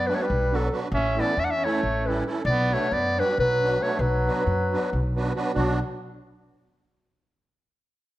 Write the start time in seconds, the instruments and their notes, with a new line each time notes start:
Already playing: upright bass F#2, trumpet B3
0.07 accordion F#3 B3 D4 F#4 B4, trumpet G3, clarinet B4
0.15 trumpet A3, clarinet C#5
0.22 trumpet G3, clarinet B4
0.30 upright bass B1
0.51 accordion F#3 B3 D4 F#4 B4
0.55 trumpet F#3, clarinet A4
0.71 accordion F#3 B3 D4 F#4 B4
0.92 upright bass A1, trumpet C#4, clarinet E5
1.15 accordion E3 A3 C#4 E4 A4
1.19 trumpet B3, clarinet D5
1.37 upright bass E2, trumpet C#4, clarinet E5
1.44 trumpet D4, clarinet F#5
1.51 clarinet E5
1.55 trumpet C#4
1.63 accordion E3 A3 C#4 E4 A4, trumpet A3, clarinet C#5
1.83 upright bass A1
2.06 accordion E3 A3 C#4 E4 A4, trumpet G3, clarinet B4
2.25 accordion E3 A3 C#4 E4 A4
2.45 upright bass B1, trumpet B3, clarinet D5
2.69 accordion F#3 B3 D4 F#4 B4
2.73 trumpet A3, clarinet C#5
2.91 upright bass F#2, trumpet B3, clarinet D5
3.17 accordion F#3 B3 D4 F#4 B4, trumpet G3, clarinet B4
3.38 upright bass B1, trumpet F#3, clarinet B4
3.62 accordion F#3 B3 D4 F#4 B4
3.81 accordion F#3 B3 D4 F#4 B4, trumpet A3, clarinet C#5
3.99 upright bass B1, trumpet F#3, clarinet B4
4.25 accordion F#3 B3 D4 F#4 B4
4.47 upright bass F#2
4.71 accordion F#3 B3 D4 F#4 B4
4.93 upright bass B1
5.15 accordion F#3 B3 D4 F#4 B4
5.35 accordion F#3 B3 D4 F#4 B4
5.54 upright bass B1, accordion F#3 B3 D4 F#4, trumpet D4, clarinet F#4